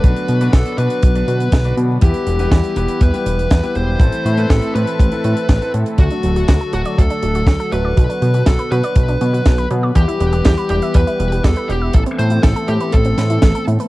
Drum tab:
HH |xxxxxxxxxxxxxxx-|xxxxxxxxxxxxxxx-|xxxxxxxxxxxxxxxx|xxxxxxxxxxxxxxx-|
SD |----o-------o---|----o-------o---|----o-------o---|----o-------o---|
BD |o---o---o---o---|o---o---o---o---|o---o---o---o---|o---o---o---o---|

HH |xxxxxxxxxxxxxxx-|xxxxxxxxxxxxxxx-|xxxxxxxxxxxxxxxx|
SD |----o-------o---|----o-------o---|----o-----o-o---|
BD |o---o---o---o---|o---o---o---o---|o---o---o---o---|